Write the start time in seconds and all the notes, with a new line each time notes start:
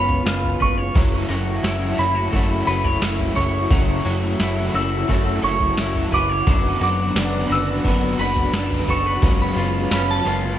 Already playing: F#1 C#3 F#3 G#3 B3 F4 G#4 C#5 B5
0.09 floor tom
0.26 F#1 F4, snare
0.44 floor tom
0.60 F#1 B4 C#6, kick, floor tom
0.78 C#5
0.95 F#1 F#3 A3 E4 F#4 C#5, kick, floor tom
1.29 F#1 F#4 C#5
1.33 E4
1.63 F#1 F#3 A3 E4 F#4 C#5, snare
1.98 F#1 E4 F#4 C#5 B5
2.02 E4
2.15 F#4
2.32 F#1 A3 E4 F#4, kick
2.36 C#5
2.67 F#1 F#4 B4 C#5 B5
2.71 E4
2.84 C#5, floor tom
3.01 F#1 F#3 A3 E4 F#4 C#5, snare
3.19 floor tom
3.35 F#1 F#4 C#5 C#6, floor tom
3.39 E4
3.71 F#1 F#3 A3 E4 F#4 C#5, kick, floor tom
4.05 F#1 F#4 C#5
4.09 E4
4.40 F#1 F#3 A3 E4 F#4 C#5, snare
4.74 F#1 F#4 C#5 E6
4.78 E4
5.08 F#1 A3 E4 F#4, kick
5.12 C#5
5.42 F#1 F#4 C#5 C#6
5.47 E4
5.61 floor tom
5.77 F#1 F#3 A3 E4 F#4 C#5, snare
5.95 floor tom
6.12 F#1 F#4 B4 D6, floor tom
6.16 E4
6.29 C#5
6.46 F#1 D3 F#3 B3 D4 F#4 B4, kick, floor tom
6.81 F#1 F#4 B4 D6
6.85 D4
7.15 F#1 F#3 B3 D4 F#4 B4, snare
7.50 F#1 F#4 B4 E6
7.54 D4
7.84 F#1 B3 D4 F#4, kick
7.88 B4
8.19 F#1 F#4 B4 B5
8.23 D4
8.36 floor tom
8.53 F#1 F#3 B3 D4 F#4 B4, snare
8.71 floor tom
8.87 F#1 F#4 A4 B4 C#6, floor tom
8.91 D4
9.06 B4
9.22 F#1 C#3 F#3 G#3 B3 C#4 F4 B4, kick, floor tom
9.42 B5
9.56 F#1 F4 B4
9.61 C#4
9.91 F#1 F#3 G#3 C#4 F4 B4 B5, snare
10.11 A5
10.25 F#1 F4 B4
10.29 C#4